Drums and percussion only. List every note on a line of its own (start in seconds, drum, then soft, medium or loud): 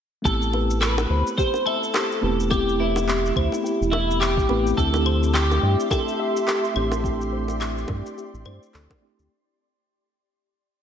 0.25 kick loud
0.25 shaker medium
0.42 shaker soft
0.53 high bongo medium
0.70 shaker medium
0.82 clap loud
0.82 claves medium
0.82 shaker medium
0.98 high bongo medium
0.98 shaker soft
1.27 shaker medium
1.38 kick medium
1.38 shaker medium
1.54 high bongo medium
1.54 shaker soft
1.67 claves medium
1.83 shaker medium
1.94 clap loud
1.94 high bongo medium
1.94 shaker soft
2.12 shaker soft
2.40 shaker medium
2.51 kick loud
2.51 high bongo soft
2.51 claves medium
2.51 shaker medium
2.69 shaker soft
2.96 high bongo medium
2.96 shaker medium
3.08 clap loud
3.08 shaker medium
3.26 shaker soft
3.36 kick loud
3.36 claves medium
3.52 high bongo soft
3.52 shaker medium
3.66 shaker medium
3.82 shaker soft
3.93 high bongo medium
4.11 shaker medium
4.22 clap loud
4.22 claves medium
4.22 shaker medium
4.37 kick loud
4.37 shaker soft
4.49 high bongo medium
4.67 shaker medium
4.78 kick loud
4.78 shaker medium
4.94 high bongo medium
4.94 shaker soft
5.06 claves medium
5.23 shaker medium
5.34 clap loud
5.34 shaker medium
5.51 high bongo medium
5.51 shaker soft
5.80 shaker medium
5.91 kick loud
5.91 high bongo medium
5.91 claves medium
5.91 shaker medium
6.08 shaker soft
6.37 shaker medium
6.48 clap medium
6.48 high bongo soft
6.48 shaker medium
6.65 shaker soft
6.76 claves medium
6.92 high bongo medium
6.92 shaker medium
7.04 kick loud
7.04 shaker medium
7.21 shaker soft
7.48 high bongo soft
7.48 shaker medium
7.61 clap medium
7.61 claves medium
7.61 shaker medium
7.78 shaker soft
7.88 kick loud
7.88 high bongo medium
8.06 shaker medium
8.18 shaker medium
8.35 shaker soft
8.45 high bongo medium
8.45 claves medium
8.63 shaker medium
8.74 clap medium
8.74 shaker medium
8.90 kick loud
8.90 high bongo medium
8.90 shaker soft
9.19 shaker medium